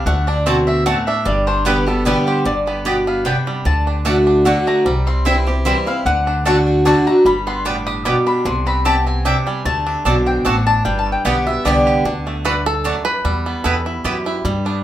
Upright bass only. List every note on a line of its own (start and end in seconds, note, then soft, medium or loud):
0.06 0.93 D2 loud
1.26 2.13 G1 loud
2.45 3.32 G1 medium
3.65 4.52 D2 loud
4.86 5.72 C2 medium
6.05 6.92 D2 loud
7.25 8.12 G1 medium
8.45 9.32 C2 loud
9.65 9.94 D2 medium
10.05 10.39 B1 medium
10.45 10.79 A1 medium
10.85 11.14 G1 medium
11.25 11.59 B1 medium
11.65 11.99 C2 medium
12.05 12.92 D2 medium
13.25 13.54 E2 medium
13.65 13.99 E2 medium
14.05 14.39 F#2 medium
14.45 14.84 G2 medium